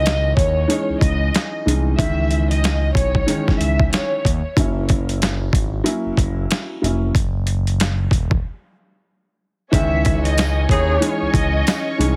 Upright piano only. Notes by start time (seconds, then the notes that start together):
Already playing: D#3 E3 G#3 C#4
0.68 E3 G#3 C#4 D#4
1.65 E3 G#3 C#4 D#4
1.98 D#3 E3 G#3 C#4
3.26 D#3 E3 G#3 C#4
4.56 F#3 A#3 C#4 E4
5.84 F#3 A#3 C#4 E4
6.82 F#3 A#3 C#4 E4
9.71 D#3 E3 G#3 C#4
11.00 E3 G#3 C#4 D#4
11.98 E3 G#3 C#4 D#4